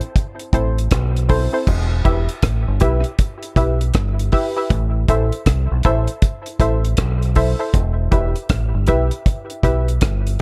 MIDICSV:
0, 0, Header, 1, 4, 480
1, 0, Start_track
1, 0, Key_signature, 1, "minor"
1, 0, Tempo, 758534
1, 1057, Time_signature, 4, 2, 24, 8
1, 6590, End_track
2, 0, Start_track
2, 0, Title_t, "Synth stab"
2, 0, Program_c, 0, 62
2, 336, Note_on_c, 0, 60, 79
2, 339, Note_on_c, 0, 64, 77
2, 342, Note_on_c, 0, 69, 77
2, 345, Note_on_c, 0, 72, 93
2, 482, Note_off_c, 0, 60, 0
2, 483, Note_off_c, 0, 64, 0
2, 485, Note_off_c, 0, 69, 0
2, 486, Note_off_c, 0, 72, 0
2, 814, Note_on_c, 0, 60, 96
2, 818, Note_on_c, 0, 64, 89
2, 821, Note_on_c, 0, 69, 84
2, 823, Note_on_c, 0, 72, 108
2, 959, Note_off_c, 0, 60, 0
2, 962, Note_off_c, 0, 64, 0
2, 964, Note_off_c, 0, 69, 0
2, 965, Note_off_c, 0, 72, 0
2, 967, Note_on_c, 0, 60, 75
2, 969, Note_on_c, 0, 64, 68
2, 971, Note_on_c, 0, 69, 69
2, 974, Note_on_c, 0, 72, 86
2, 1054, Note_off_c, 0, 60, 0
2, 1055, Note_off_c, 0, 64, 0
2, 1056, Note_off_c, 0, 69, 0
2, 1058, Note_off_c, 0, 72, 0
2, 1294, Note_on_c, 0, 64, 88
2, 1298, Note_on_c, 0, 67, 77
2, 1300, Note_on_c, 0, 71, 79
2, 1302, Note_on_c, 0, 76, 103
2, 1441, Note_off_c, 0, 64, 0
2, 1443, Note_off_c, 0, 67, 0
2, 1443, Note_off_c, 0, 71, 0
2, 1445, Note_off_c, 0, 76, 0
2, 1776, Note_on_c, 0, 64, 98
2, 1777, Note_on_c, 0, 67, 90
2, 1780, Note_on_c, 0, 71, 84
2, 1783, Note_on_c, 0, 76, 103
2, 1921, Note_off_c, 0, 64, 0
2, 1922, Note_off_c, 0, 67, 0
2, 1923, Note_off_c, 0, 71, 0
2, 1925, Note_off_c, 0, 76, 0
2, 2255, Note_on_c, 0, 64, 89
2, 2257, Note_on_c, 0, 67, 77
2, 2260, Note_on_c, 0, 71, 79
2, 2262, Note_on_c, 0, 76, 89
2, 2401, Note_off_c, 0, 64, 0
2, 2402, Note_off_c, 0, 67, 0
2, 2404, Note_off_c, 0, 71, 0
2, 2404, Note_off_c, 0, 76, 0
2, 2735, Note_on_c, 0, 64, 101
2, 2740, Note_on_c, 0, 67, 86
2, 2742, Note_on_c, 0, 71, 83
2, 2743, Note_on_c, 0, 76, 106
2, 2881, Note_off_c, 0, 64, 0
2, 2883, Note_off_c, 0, 67, 0
2, 2884, Note_off_c, 0, 71, 0
2, 2885, Note_off_c, 0, 76, 0
2, 2888, Note_on_c, 0, 64, 75
2, 2891, Note_on_c, 0, 67, 69
2, 2894, Note_on_c, 0, 71, 69
2, 2896, Note_on_c, 0, 76, 88
2, 2975, Note_off_c, 0, 64, 0
2, 2976, Note_off_c, 0, 67, 0
2, 2977, Note_off_c, 0, 71, 0
2, 2979, Note_off_c, 0, 76, 0
2, 3219, Note_on_c, 0, 64, 89
2, 3221, Note_on_c, 0, 69, 75
2, 3225, Note_on_c, 0, 72, 75
2, 3227, Note_on_c, 0, 76, 96
2, 3363, Note_off_c, 0, 64, 0
2, 3364, Note_off_c, 0, 69, 0
2, 3366, Note_off_c, 0, 72, 0
2, 3367, Note_off_c, 0, 76, 0
2, 3700, Note_on_c, 0, 64, 94
2, 3701, Note_on_c, 0, 69, 95
2, 3705, Note_on_c, 0, 72, 95
2, 3707, Note_on_c, 0, 76, 109
2, 3844, Note_off_c, 0, 64, 0
2, 3844, Note_off_c, 0, 69, 0
2, 3846, Note_off_c, 0, 72, 0
2, 3847, Note_off_c, 0, 76, 0
2, 4176, Note_on_c, 0, 64, 81
2, 4179, Note_on_c, 0, 69, 76
2, 4181, Note_on_c, 0, 72, 84
2, 4185, Note_on_c, 0, 76, 97
2, 4322, Note_off_c, 0, 64, 0
2, 4323, Note_off_c, 0, 69, 0
2, 4324, Note_off_c, 0, 72, 0
2, 4326, Note_off_c, 0, 76, 0
2, 4656, Note_on_c, 0, 64, 98
2, 4658, Note_on_c, 0, 69, 93
2, 4661, Note_on_c, 0, 72, 90
2, 4664, Note_on_c, 0, 76, 100
2, 4797, Note_off_c, 0, 64, 0
2, 4800, Note_off_c, 0, 69, 0
2, 4804, Note_off_c, 0, 72, 0
2, 4805, Note_on_c, 0, 64, 78
2, 4806, Note_off_c, 0, 76, 0
2, 4808, Note_on_c, 0, 69, 73
2, 4811, Note_on_c, 0, 72, 75
2, 4813, Note_on_c, 0, 76, 82
2, 4893, Note_off_c, 0, 64, 0
2, 4895, Note_off_c, 0, 69, 0
2, 4897, Note_off_c, 0, 72, 0
2, 4897, Note_off_c, 0, 76, 0
2, 5134, Note_on_c, 0, 64, 86
2, 5136, Note_on_c, 0, 67, 81
2, 5140, Note_on_c, 0, 71, 85
2, 5142, Note_on_c, 0, 76, 99
2, 5281, Note_off_c, 0, 64, 0
2, 5282, Note_off_c, 0, 67, 0
2, 5284, Note_off_c, 0, 71, 0
2, 5285, Note_off_c, 0, 76, 0
2, 5616, Note_on_c, 0, 64, 94
2, 5617, Note_on_c, 0, 67, 86
2, 5620, Note_on_c, 0, 71, 92
2, 5624, Note_on_c, 0, 76, 106
2, 5762, Note_off_c, 0, 64, 0
2, 5763, Note_off_c, 0, 67, 0
2, 5764, Note_off_c, 0, 71, 0
2, 5766, Note_off_c, 0, 76, 0
2, 6096, Note_on_c, 0, 64, 87
2, 6099, Note_on_c, 0, 67, 83
2, 6102, Note_on_c, 0, 71, 82
2, 6104, Note_on_c, 0, 76, 93
2, 6242, Note_off_c, 0, 64, 0
2, 6244, Note_off_c, 0, 67, 0
2, 6246, Note_off_c, 0, 71, 0
2, 6247, Note_off_c, 0, 76, 0
2, 6590, End_track
3, 0, Start_track
3, 0, Title_t, "Fingered electric bass"
3, 0, Program_c, 1, 33
3, 339, Note_on_c, 1, 33, 83
3, 552, Note_off_c, 1, 33, 0
3, 584, Note_on_c, 1, 35, 92
3, 928, Note_off_c, 1, 35, 0
3, 1061, Note_on_c, 1, 28, 107
3, 1273, Note_off_c, 1, 28, 0
3, 1302, Note_on_c, 1, 28, 88
3, 1434, Note_off_c, 1, 28, 0
3, 1540, Note_on_c, 1, 33, 86
3, 1673, Note_off_c, 1, 33, 0
3, 1696, Note_on_c, 1, 31, 94
3, 1772, Note_off_c, 1, 31, 0
3, 1786, Note_on_c, 1, 35, 92
3, 1916, Note_off_c, 1, 35, 0
3, 2257, Note_on_c, 1, 35, 81
3, 2471, Note_off_c, 1, 35, 0
3, 2502, Note_on_c, 1, 31, 87
3, 2714, Note_off_c, 1, 31, 0
3, 2980, Note_on_c, 1, 33, 108
3, 3193, Note_off_c, 1, 33, 0
3, 3221, Note_on_c, 1, 33, 98
3, 3353, Note_off_c, 1, 33, 0
3, 3460, Note_on_c, 1, 36, 100
3, 3593, Note_off_c, 1, 36, 0
3, 3616, Note_on_c, 1, 35, 88
3, 3693, Note_off_c, 1, 35, 0
3, 3705, Note_on_c, 1, 33, 87
3, 3835, Note_off_c, 1, 33, 0
3, 4178, Note_on_c, 1, 33, 94
3, 4392, Note_off_c, 1, 33, 0
3, 4422, Note_on_c, 1, 35, 93
3, 4768, Note_off_c, 1, 35, 0
3, 4900, Note_on_c, 1, 28, 105
3, 5113, Note_off_c, 1, 28, 0
3, 5142, Note_on_c, 1, 28, 88
3, 5274, Note_off_c, 1, 28, 0
3, 5381, Note_on_c, 1, 33, 89
3, 5514, Note_off_c, 1, 33, 0
3, 5534, Note_on_c, 1, 31, 93
3, 5612, Note_off_c, 1, 31, 0
3, 6100, Note_on_c, 1, 35, 82
3, 6314, Note_off_c, 1, 35, 0
3, 6344, Note_on_c, 1, 31, 82
3, 6556, Note_off_c, 1, 31, 0
3, 6590, End_track
4, 0, Start_track
4, 0, Title_t, "Drums"
4, 5, Note_on_c, 9, 42, 45
4, 68, Note_off_c, 9, 42, 0
4, 99, Note_on_c, 9, 36, 104
4, 101, Note_on_c, 9, 42, 82
4, 162, Note_off_c, 9, 36, 0
4, 164, Note_off_c, 9, 42, 0
4, 250, Note_on_c, 9, 42, 47
4, 313, Note_off_c, 9, 42, 0
4, 335, Note_on_c, 9, 36, 98
4, 340, Note_on_c, 9, 42, 73
4, 398, Note_off_c, 9, 36, 0
4, 403, Note_off_c, 9, 42, 0
4, 496, Note_on_c, 9, 42, 51
4, 560, Note_off_c, 9, 42, 0
4, 574, Note_on_c, 9, 42, 106
4, 579, Note_on_c, 9, 36, 105
4, 583, Note_on_c, 9, 37, 121
4, 638, Note_off_c, 9, 42, 0
4, 642, Note_off_c, 9, 36, 0
4, 647, Note_off_c, 9, 37, 0
4, 737, Note_on_c, 9, 42, 52
4, 800, Note_off_c, 9, 42, 0
4, 817, Note_on_c, 9, 46, 62
4, 821, Note_on_c, 9, 36, 81
4, 881, Note_off_c, 9, 46, 0
4, 884, Note_off_c, 9, 36, 0
4, 1058, Note_on_c, 9, 36, 103
4, 1058, Note_on_c, 9, 49, 91
4, 1121, Note_off_c, 9, 36, 0
4, 1122, Note_off_c, 9, 49, 0
4, 1298, Note_on_c, 9, 36, 92
4, 1298, Note_on_c, 9, 42, 61
4, 1361, Note_off_c, 9, 36, 0
4, 1362, Note_off_c, 9, 42, 0
4, 1447, Note_on_c, 9, 42, 52
4, 1510, Note_off_c, 9, 42, 0
4, 1535, Note_on_c, 9, 42, 101
4, 1537, Note_on_c, 9, 36, 109
4, 1541, Note_on_c, 9, 37, 105
4, 1598, Note_off_c, 9, 42, 0
4, 1600, Note_off_c, 9, 36, 0
4, 1604, Note_off_c, 9, 37, 0
4, 1772, Note_on_c, 9, 42, 69
4, 1782, Note_on_c, 9, 36, 98
4, 1835, Note_off_c, 9, 42, 0
4, 1845, Note_off_c, 9, 36, 0
4, 1923, Note_on_c, 9, 42, 48
4, 1986, Note_off_c, 9, 42, 0
4, 2016, Note_on_c, 9, 42, 92
4, 2017, Note_on_c, 9, 36, 102
4, 2079, Note_off_c, 9, 42, 0
4, 2081, Note_off_c, 9, 36, 0
4, 2168, Note_on_c, 9, 42, 52
4, 2231, Note_off_c, 9, 42, 0
4, 2254, Note_on_c, 9, 36, 96
4, 2258, Note_on_c, 9, 42, 71
4, 2317, Note_off_c, 9, 36, 0
4, 2321, Note_off_c, 9, 42, 0
4, 2411, Note_on_c, 9, 42, 51
4, 2474, Note_off_c, 9, 42, 0
4, 2491, Note_on_c, 9, 42, 99
4, 2498, Note_on_c, 9, 36, 105
4, 2500, Note_on_c, 9, 37, 127
4, 2554, Note_off_c, 9, 42, 0
4, 2561, Note_off_c, 9, 36, 0
4, 2563, Note_off_c, 9, 37, 0
4, 2654, Note_on_c, 9, 42, 54
4, 2717, Note_off_c, 9, 42, 0
4, 2734, Note_on_c, 9, 46, 70
4, 2740, Note_on_c, 9, 36, 87
4, 2797, Note_off_c, 9, 46, 0
4, 2803, Note_off_c, 9, 36, 0
4, 2976, Note_on_c, 9, 36, 102
4, 2977, Note_on_c, 9, 42, 91
4, 3040, Note_off_c, 9, 36, 0
4, 3040, Note_off_c, 9, 42, 0
4, 3217, Note_on_c, 9, 42, 62
4, 3218, Note_on_c, 9, 36, 96
4, 3280, Note_off_c, 9, 42, 0
4, 3281, Note_off_c, 9, 36, 0
4, 3369, Note_on_c, 9, 42, 54
4, 3432, Note_off_c, 9, 42, 0
4, 3456, Note_on_c, 9, 42, 105
4, 3457, Note_on_c, 9, 36, 110
4, 3462, Note_on_c, 9, 37, 108
4, 3519, Note_off_c, 9, 42, 0
4, 3520, Note_off_c, 9, 36, 0
4, 3525, Note_off_c, 9, 37, 0
4, 3691, Note_on_c, 9, 42, 73
4, 3701, Note_on_c, 9, 36, 92
4, 3754, Note_off_c, 9, 42, 0
4, 3765, Note_off_c, 9, 36, 0
4, 3844, Note_on_c, 9, 42, 50
4, 3907, Note_off_c, 9, 42, 0
4, 3936, Note_on_c, 9, 42, 89
4, 3938, Note_on_c, 9, 36, 111
4, 3999, Note_off_c, 9, 42, 0
4, 4001, Note_off_c, 9, 36, 0
4, 4088, Note_on_c, 9, 42, 54
4, 4151, Note_off_c, 9, 42, 0
4, 4174, Note_on_c, 9, 36, 93
4, 4177, Note_on_c, 9, 42, 72
4, 4237, Note_off_c, 9, 36, 0
4, 4240, Note_off_c, 9, 42, 0
4, 4332, Note_on_c, 9, 42, 54
4, 4395, Note_off_c, 9, 42, 0
4, 4410, Note_on_c, 9, 42, 109
4, 4418, Note_on_c, 9, 36, 113
4, 4420, Note_on_c, 9, 37, 121
4, 4474, Note_off_c, 9, 42, 0
4, 4481, Note_off_c, 9, 36, 0
4, 4483, Note_off_c, 9, 37, 0
4, 4572, Note_on_c, 9, 42, 51
4, 4635, Note_off_c, 9, 42, 0
4, 4653, Note_on_c, 9, 46, 63
4, 4659, Note_on_c, 9, 36, 83
4, 4717, Note_off_c, 9, 46, 0
4, 4723, Note_off_c, 9, 36, 0
4, 4896, Note_on_c, 9, 42, 96
4, 4897, Note_on_c, 9, 36, 107
4, 4960, Note_off_c, 9, 36, 0
4, 4960, Note_off_c, 9, 42, 0
4, 5137, Note_on_c, 9, 42, 57
4, 5138, Note_on_c, 9, 36, 94
4, 5200, Note_off_c, 9, 42, 0
4, 5201, Note_off_c, 9, 36, 0
4, 5288, Note_on_c, 9, 42, 51
4, 5351, Note_off_c, 9, 42, 0
4, 5374, Note_on_c, 9, 42, 107
4, 5377, Note_on_c, 9, 36, 106
4, 5381, Note_on_c, 9, 37, 116
4, 5438, Note_off_c, 9, 42, 0
4, 5441, Note_off_c, 9, 36, 0
4, 5444, Note_off_c, 9, 37, 0
4, 5610, Note_on_c, 9, 42, 63
4, 5622, Note_on_c, 9, 36, 91
4, 5673, Note_off_c, 9, 42, 0
4, 5686, Note_off_c, 9, 36, 0
4, 5766, Note_on_c, 9, 42, 50
4, 5829, Note_off_c, 9, 42, 0
4, 5859, Note_on_c, 9, 36, 102
4, 5860, Note_on_c, 9, 42, 93
4, 5923, Note_off_c, 9, 36, 0
4, 5923, Note_off_c, 9, 42, 0
4, 6011, Note_on_c, 9, 42, 50
4, 6074, Note_off_c, 9, 42, 0
4, 6096, Note_on_c, 9, 36, 96
4, 6101, Note_on_c, 9, 42, 74
4, 6160, Note_off_c, 9, 36, 0
4, 6164, Note_off_c, 9, 42, 0
4, 6254, Note_on_c, 9, 42, 52
4, 6317, Note_off_c, 9, 42, 0
4, 6335, Note_on_c, 9, 42, 106
4, 6340, Note_on_c, 9, 36, 113
4, 6344, Note_on_c, 9, 37, 123
4, 6398, Note_off_c, 9, 42, 0
4, 6403, Note_off_c, 9, 36, 0
4, 6407, Note_off_c, 9, 37, 0
4, 6497, Note_on_c, 9, 42, 54
4, 6560, Note_off_c, 9, 42, 0
4, 6590, End_track
0, 0, End_of_file